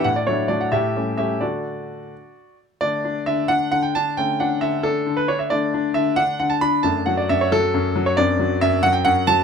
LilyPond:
<<
  \new Staff \with { instrumentName = "Grand piano" } { \time 6/8 \key d \major \tempo 4. = 89 << { fis''16 d''16 <e' cis''>8 d''16 fis''16 <g' e''>4 <g' e''>8 | <fis' d''>2~ <fis' d''>8 r8 | d''4 e''8 fis''8 fis''16 g''16 a''8 | g''8 fis''8 e''8 a'8. b'16 cis''16 e''16 |
d''4 e''8 fis''8 fis''16 a''16 b''8 | a''8 fis''16 d''16 e''16 cis''16 a'4~ a'16 cis''16 | \key d \mixolydian d''4 e''8 fis''16 g''16 fis''8 a''8 | } \\ { r2. | r2. | <a d'>2. | <a cis'>2. |
<a d'>2. | <a d'>2. | <c' d'>2. | } >> }
  \new Staff \with { instrumentName = "Grand piano" } { \clef bass \time 6/8 \key d \major a,8 <fis a d'>8 <fis a d'>8 a,8 <g a cis'>8 <g a cis'>8 | <d a d'>4. r4. | d8 d'8 d8 d'8 d8 d'8 | d8 d'8 d8 d'8 d8 d'8 |
d8 d'8 d8 d'8 d8 d'8 | fis,8 fis8 fis,8 fis8 fis,8 fis8 | \key d \mixolydian fis,8 fis8 fis,8 fis8 fis,8 fis8 | }
>>